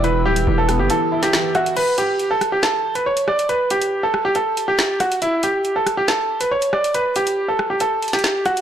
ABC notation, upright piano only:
X:1
M:4/4
L:1/16
Q:1/4=139
K:Edor
V:1 name="Upright piano"
B2 G3 A2 G A3 G3 F2 | B2 G3 A2 G A3 B c2 d2 | B2 G3 A2 G A3 G3 F2 | E2 G3 A2 G A3 B c2 d2 |
B2 G3 A2 G A3 G3 F2 |]